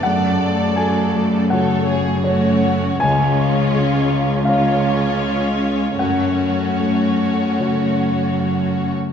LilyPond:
<<
  \new Staff \with { instrumentName = "Grand piano" } { \time 4/4 \key fis \minor \tempo 4 = 80 << { fis''4 gis''4 fis''4 cis''4 | gis''2 eis''2 | fis''2.~ fis''8 r8 | } \\ { fis,4 a4 <fis' cis''>2 | cis,4 gis4 <eis' cis''>2 | fis,4 a4 <fis' cis''>2 | } >> }
  \new Staff \with { instrumentName = "Violin section" } { \time 4/4 \key fis \minor << { d''2 cis''4 cis''4 | cis''2 cis''2 | cis''2.~ cis''8. r16 | } \\ { a'2 a'8 gis'8 fis'4 | eis'2 eis'2 | fis'2.~ fis'8. r16 | } >> }
  \new Staff \with { instrumentName = "Harp" } { \time 4/4 \key fis \minor <fis, a fis'>8 a8 cis'''8 fis'8 cis8 a8 cis''8 fis'8 | cis8 gis8 cis''8 eis'8 cis'8 gis8 cis''8 eis'8 | fis,8 a8 cis''8 fis'8 cis8 a8 cis''8 fis'8 | }
  \new Staff \with { instrumentName = "Viola section" } { \time 4/4 \key fis \minor << { cis2. cis'4 | cis'2 cis'2 | cis'2.~ cis'8. r16 | } \\ { a8 a8 fis8 a4. a4 | gis2 gis2 | a2.~ a8. r16 | } >> }
  \new Staff \with { instrumentName = "Cello section" } { \clef bass \time 4/4 \key fis \minor fis,1 | cis,1 | fis,2.~ fis,8. r16 | }
>>